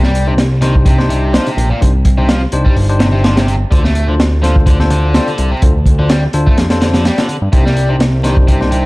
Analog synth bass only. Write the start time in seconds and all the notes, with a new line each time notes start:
Already playing: C2
1.57 A#1
1.82 C2
2.53 C2
2.76 G1
3.72 D2
5.39 C2
5.62 D2
6.34 D2
6.57 F2
7.42 G2
7.53 C2